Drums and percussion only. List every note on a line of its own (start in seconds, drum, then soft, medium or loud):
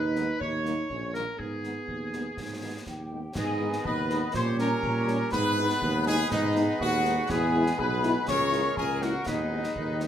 0.16 snare soft
0.40 concert bass drum medium
0.66 snare soft
0.90 concert bass drum medium
1.14 snare soft
1.39 concert bass drum medium
1.64 snare soft
1.88 concert bass drum medium
2.13 snare soft
2.37 concert bass drum medium
2.37 snare soft
2.87 concert bass drum medium
2.87 snare soft
3.35 concert bass drum medium
3.35 snare medium
3.35 crash soft
3.73 snare soft
3.85 concert bass drum medium
4.10 snare soft
4.34 concert bass drum medium
4.34 snare medium
4.59 snare soft
4.83 concert bass drum medium
5.08 snare soft
5.32 concert bass drum medium
5.32 snare medium
5.70 snare medium
5.82 concert bass drum medium
6.06 snare medium
6.31 concert bass drum medium
6.31 snare medium
6.56 snare medium
6.80 concert bass drum medium
7.05 snare medium
7.30 concert bass drum medium
7.30 snare medium
7.30 crash soft
7.66 snare medium
7.79 concert bass drum medium
8.03 snare medium
8.28 concert bass drum medium
8.28 snare medium
8.53 snare medium
8.77 concert bass drum medium
9.02 snare medium
9.26 concert bass drum medium
9.26 snare medium
9.64 snare medium
9.76 concert bass drum medium
10.00 snare medium